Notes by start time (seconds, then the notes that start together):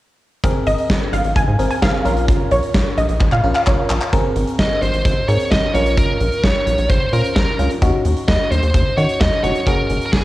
0.44 G#1 C4 G#4 A#4, kick, closed hi-hat
0.67 G#1 D#5, closed hi-hat
0.78 closed hi-hat
0.90 G#1, kick, snare
1.13 G#1 F5, closed hi-hat
1.24 G#1, closed hi-hat
1.36 G#1 G#5, kick, closed hi-hat
1.48 G#2
1.59 G#1 C4 G#4 A#4, closed hi-hat
1.71 G#5, closed hi-hat
1.82 G#1 C4 G#4 A#4 F5, kick, snare
2.05 A#1 C#4 F4 A#4, closed hi-hat
2.17 closed hi-hat
2.28 kick, closed hi-hat
2.51 A#1 C#5, closed hi-hat
2.63 closed hi-hat
2.74 A#1, kick, snare
2.98 A#1 D#5, closed hi-hat
3.09 A#1, closed hi-hat
3.20 A#1, kick, clap
3.32 A#2 F5, clap
3.44 A#1 C#4 F4 A#4
3.55 F5, clap
3.67 A#1 C#4 F4 A#4 C#5, kick, clap
3.90 A#1, clap
4.01 clap
4.13 G#1 C4 G#4 A#4, kick, closed hi-hat
4.36 G#1, closed hi-hat
4.48 closed hi-hat
4.59 G#1 D#5, kick, snare
4.82 G#1 C5, closed hi-hat
4.94 G#1, closed hi-hat
5.05 G#1, kick, closed hi-hat
5.28 G#2 C4 G#4 A#4 C#5, closed hi-hat
5.40 closed hi-hat
5.51 G#1 D#5, kick, snare
5.74 A#1 C#4 F4 A#4 C#5, closed hi-hat
5.86 closed hi-hat
5.97 A#4, kick, closed hi-hat
6.20 A#1, closed hi-hat
6.32 closed hi-hat
6.44 A#1 C#5, kick, snare
6.67 A#1, closed hi-hat
6.78 A#1, closed hi-hat
6.90 A#1 C5, kick, closed hi-hat
7.13 A#2 C#4 F4 A#4 C5, closed hi-hat
7.24 closed hi-hat
7.36 A#1 A#4, kick, snare
7.59 C#2 C#4 F4 A#4, closed hi-hat
7.71 closed hi-hat
7.82 D#2 C#4 D#4 F#4, kick, closed hi-hat
8.05 D#2, closed hi-hat
8.17 closed hi-hat
8.28 D#2 D#5, kick, snare
8.51 D#2 C5, closed hi-hat
8.63 D#2, closed hi-hat
8.74 D#2, kick, closed hi-hat
8.97 D#3 C#4 D#4 F#4 C#5, closed hi-hat
9.09 closed hi-hat
9.21 D#2 D#5, kick, snare
9.44 F1 C#4 D#4 F#4 C#5, closed hi-hat
9.55 closed hi-hat
9.67 F#1 C#4 F#4 G#4 A#4, kick, closed hi-hat
9.90 F#1, closed hi-hat
10.01 closed hi-hat
10.06 A#4
10.13 F#1 G#4, kick, snare